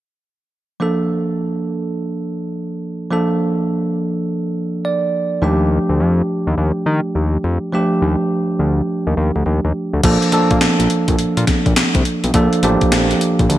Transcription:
0.80 tine electric piano F3 A#3 D4 A4
3.11 tine electric piano F3 A#3 D4 A4
4.85 tine electric piano D5
5.42 analog synth bass D#2, tine electric piano F3 A3 D4 G4
5.89 analog synth bass D2
6.00 analog synth bass F2
6.47 analog synth bass D#2
6.58 analog synth bass D#2
6.86 analog synth bass D#3
7.15 analog synth bass D#2
7.44 analog synth bass F2
7.72 tine electric piano F3 A3 D4 G4
8.02 analog synth bass D#2
8.59 analog synth bass D2
9.07 analog synth bass D#2
9.17 analog synth bass D#2
9.36 analog synth bass D2
9.46 analog synth bass D#2
9.65 analog synth bass D#2
9.93 analog synth bass D2
10.04 analog synth bass A#1, tine electric piano F3 A#3 D4 A4, kick, closed hi-hat, crash
10.22 closed hi-hat
10.32 analog synth bass A#2, tine electric piano F3 A#3 D4 A4, closed hi-hat
10.51 analog synth bass A#2, kick, closed hi-hat
10.61 analog synth bass A#1, snare, clap, closed hi-hat
10.80 analog synth bass A#1, closed hi-hat
10.90 closed hi-hat
11.08 analog synth bass A#1, kick, closed hi-hat
11.19 analog synth bass A#2, closed hi-hat
11.37 analog synth bass A#2, closed hi-hat
11.47 kick, snare, closed hi-hat
11.66 analog synth bass A#1, kick, closed hi-hat
11.76 analog synth bass C2, snare, clap, closed hi-hat
11.95 analog synth bass C2, kick, closed hi-hat
12.05 closed hi-hat
12.24 analog synth bass B1, closed hi-hat
12.34 analog synth bass A#1, tine electric piano F3 A#3 D4 A4, kick, closed hi-hat
12.53 closed hi-hat
12.63 analog synth bass A1, tine electric piano F3 A#3 D4 G4, closed hi-hat
12.81 kick, closed hi-hat
12.92 analog synth bass A#1, snare, clap, closed hi-hat
13.11 closed hi-hat
13.21 closed hi-hat
13.39 analog synth bass A#1, kick, closed hi-hat
13.49 analog synth bass D2, closed hi-hat

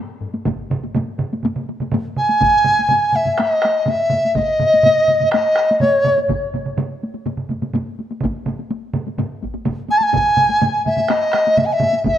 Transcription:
0.21 taiko low-mid
0.34 taiko high
0.45 taiko, taiko low-mid, taiko mid, taiko high
0.70 taiko low-mid, taiko mid
0.84 taiko high
0.95 taiko low-mid, taiko mid, taiko high
1.19 taiko low-mid, taiko mid
1.33 taiko high
1.43 taiko low-mid, taiko mid, taiko high
1.56 taiko low-mid, taiko mid
1.69 taiko high
1.80 taiko low-mid, taiko mid, taiko high
1.92 taiko low-mid, taiko mid, taiko high
2.16 dizi G#5, taiko low-mid, taiko mid
2.29 taiko high
2.41 taiko, taiko low-mid, taiko mid, taiko high
2.64 taiko low-mid, taiko mid, taiko high
2.79 taiko high
2.89 taiko low-mid, taiko mid, taiko high
3.13 dizi E5, taiko low-mid, taiko mid, taiko high
3.25 taiko low-mid, taiko mid, taiko high
3.38 dizi D#5, taiko rim, taiko high
3.62 taiko rim, taiko high
3.86 dizi E5, taiko low-mid, taiko mid, taiko high
4.10 taiko low-mid, taiko mid, taiko high
4.25 taiko high
4.34 dizi D#5, taiko, taiko low-mid, taiko mid, taiko high
4.60 taiko low-mid, taiko mid, taiko high
4.74 taiko high
4.83 taiko low-mid, taiko mid, taiko high
5.07 taiko low-mid, taiko mid, taiko high
5.20 taiko low-mid, taiko mid, taiko high
5.31 dizi D#5, taiko rim, taiko high
5.56 taiko rim
5.71 taiko high
5.80 dizi C#5, taiko low-mid, taiko mid, taiko high
6.04 taiko low-mid, taiko mid, taiko high
6.18 taiko high
6.28 taiko, taiko low-mid, taiko mid, taiko high
6.52 taiko low-mid, taiko mid, taiko high
6.65 taiko low-mid, taiko mid
6.77 taiko low-mid, taiko mid, taiko high
7.04 taiko high
7.14 taiko high
7.26 taiko low-mid, taiko mid, taiko high
7.37 taiko low-mid, taiko mid
7.49 taiko low-mid, taiko mid, taiko high
7.62 taiko low-mid, taiko mid, taiko high
7.74 taiko low-mid, taiko mid, taiko high
7.99 taiko high
8.11 taiko high
8.21 taiko, taiko low-mid, taiko mid, taiko high
8.45 taiko low-mid, taiko mid, taiko high
8.59 taiko high
8.71 taiko high
8.93 taiko low-mid, taiko mid, taiko high
9.07 taiko high
9.18 taiko low-mid, taiko mid, taiko high
9.43 taiko, taiko high
9.54 taiko high
9.65 taiko, taiko low-mid, taiko mid, taiko high
9.89 dizi G#5, taiko high
9.97 dizi A5, taiko high
10.03 dizi G#5
10.13 taiko, taiko low-mid, taiko mid, taiko high
10.37 taiko low-mid, taiko mid, taiko high
10.49 taiko high
10.61 taiko low-mid, taiko mid, taiko high
10.86 dizi E5, taiko low-mid, taiko mid, taiko high
10.97 taiko low-mid, taiko mid, taiko high
11.08 dizi D#5, taiko rim, taiko high
11.33 taiko rim, taiko high
11.47 taiko high
11.57 dizi E5, taiko low-mid, taiko mid, taiko high
11.65 dizi G#5
11.73 dizi E5
11.80 taiko low-mid, taiko mid, taiko high
11.93 taiko high
12.04 dizi D#5, taiko, taiko low-mid, taiko mid, taiko high

